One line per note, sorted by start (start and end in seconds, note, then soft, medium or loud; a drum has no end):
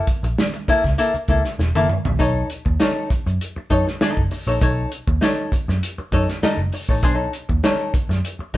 0.07 kick loud
0.07 closed hi-hat medium
0.23 0.34 A#1 medium
0.23 muted hollow-body jazz guitar stroke medium
0.23 closed hi-hat medium
0.38 snare loud
0.54 muted hollow-body jazz guitar stroke medium
0.54 closed hi-hat soft
0.68 0.85 A#3 medium
0.68 0.83 E4 medium
0.68 0.83 A4 medium
0.68 muted picked electric bass stroke soft
0.68 kick loud
0.68 closed hi-hat medium
0.84 0.95 C#2 medium
0.84 muted hollow-body jazz guitar stroke soft
0.84 kick medium
0.84 snare soft
0.84 closed hi-hat soft
0.98 1.15 A#3 medium
0.98 1.14 E4 medium
0.98 1.13 A4 medium
0.98 closed hi-hat loud
1.14 muted picked electric bass stroke soft
1.14 muted hollow-body jazz guitar stroke soft
1.14 closed hi-hat soft
1.28 1.41 C#2 medium
1.28 1.41 A#3 medium
1.28 1.42 E4 medium
1.28 1.42 A4 medium
1.28 kick medium
1.28 closed hi-hat medium
1.45 muted hollow-body jazz guitar stroke soft
1.45 snare soft
1.45 closed hi-hat medium
1.59 1.71 E1 medium
1.59 muted hollow-body jazz guitar stroke soft
1.59 snare medium
1.75 1.86 F#1 medium
1.75 1.88 A#3 medium
1.75 1.89 E4 medium
1.75 1.89 A4 medium
1.75 high tom medium
1.89 muted hollow-body jazz guitar stroke soft
1.89 mid tom medium
2.05 2.16 A#1 medium
2.05 muted hollow-body jazz guitar stroke soft
2.05 floor tom loud
2.19 2.42 B1 medium
2.19 2.47 D#4 medium
2.19 2.47 A4 medium
2.19 2.48 C#5 medium
2.19 kick loud
2.19 closed hi-hat medium
2.50 closed hi-hat medium
2.65 2.77 D#2 medium
2.65 muted hollow-body jazz guitar stroke soft
2.65 kick medium
2.80 3.08 D#4 medium
2.80 3.08 A4 medium
2.80 3.08 C#5 medium
2.80 snare loud
2.80 closed hi-hat medium
3.10 muted hollow-body jazz guitar stroke soft
3.10 muted picked electric bass stroke soft
3.10 kick loud
3.10 closed hi-hat medium
3.26 3.37 F#2 medium
3.26 muted hollow-body jazz guitar stroke soft
3.26 closed hi-hat soft
3.41 closed hi-hat medium
3.56 muted hollow-body jazz guitar stroke soft
3.56 muted picked electric bass stroke soft
3.70 3.83 F#2 medium
3.70 3.87 D#4 medium
3.70 3.86 A4 medium
3.70 3.86 C#5 medium
3.70 kick medium
3.70 closed hi-hat medium
3.87 muted hollow-body jazz guitar stroke soft
3.87 snare soft
4.01 4.21 D#4 medium
4.01 4.22 A4 medium
4.01 4.22 D#5 medium
4.01 muted picked electric bass stroke soft
4.01 snare loud
4.01 closed hi-hat medium
4.17 4.28 F#1 medium
4.17 kick medium
4.31 muted hollow-body jazz guitar stroke soft
4.31 open hi-hat medium
4.47 4.58 A#1 medium
4.47 4.59 D#4 soft
4.47 4.59 A4 medium
4.47 4.59 C#5 medium
4.61 4.84 B1 loud
4.61 4.89 D#4 medium
4.61 4.89 A4 medium
4.61 4.90 C#5 medium
4.61 kick loud
4.61 closed hi-hat medium
4.92 closed hi-hat medium
5.07 5.18 D#2 medium
5.07 muted hollow-body jazz guitar stroke medium
5.07 kick medium
5.21 5.49 D#4 medium
5.21 5.50 A4 medium
5.21 5.50 C#5 medium
5.21 snare loud
5.21 closed hi-hat medium
5.52 muted picked electric bass stroke soft
5.52 muted hollow-body jazz guitar stroke soft
5.52 kick loud
5.52 closed hi-hat medium
5.68 5.79 F#2 medium
5.68 muted hollow-body jazz guitar stroke soft
5.68 snare soft
5.83 closed hi-hat loud
5.98 muted picked electric bass stroke soft
5.98 muted hollow-body jazz guitar stroke soft
6.12 6.24 F#2 medium
6.12 6.29 D#4 medium
6.12 6.28 A4 medium
6.12 6.28 C#5 medium
6.12 kick medium
6.12 closed hi-hat medium
6.29 muted hollow-body jazz guitar stroke soft
6.29 snare soft
6.29 closed hi-hat medium
6.42 6.59 D#4 medium
6.42 6.59 A4 medium
6.42 6.60 D#5 medium
6.42 muted picked electric bass stroke soft
6.42 snare loud
6.42 closed hi-hat medium
6.57 6.69 F#1 medium
6.72 muted hollow-body jazz guitar stroke soft
6.72 open hi-hat medium
6.89 7.03 A1 medium
6.89 7.01 D#4 soft
6.89 7.01 A4 medium
6.89 7.00 C#5 medium
6.89 kick medium
7.03 7.26 B1 medium
7.03 7.15 D4 medium
7.03 7.15 G#4 medium
7.03 7.15 C5 medium
7.03 kick loud
7.03 closed hi-hat medium
7.15 7.31 D#4 medium
7.15 7.31 A4 medium
7.15 7.31 C#5 medium
7.33 closed hi-hat medium
7.49 7.60 D#2 medium
7.49 muted hollow-body jazz guitar stroke soft
7.49 kick medium
7.64 7.91 D#4 medium
7.64 7.92 A4 medium
7.64 7.92 C#5 loud
7.64 snare loud
7.64 closed hi-hat medium
7.94 muted hollow-body jazz guitar stroke soft
7.94 muted picked electric bass stroke soft
7.94 kick loud
7.94 closed hi-hat medium
8.09 8.20 F#2 medium
8.09 muted hollow-body jazz guitar stroke soft
8.09 snare soft
8.09 closed hi-hat soft
8.25 closed hi-hat loud
8.39 muted picked electric bass stroke medium
8.39 muted hollow-body jazz guitar stroke soft
8.54 8.57 F#2 medium
8.54 8.57 D#4 medium
8.54 closed hi-hat medium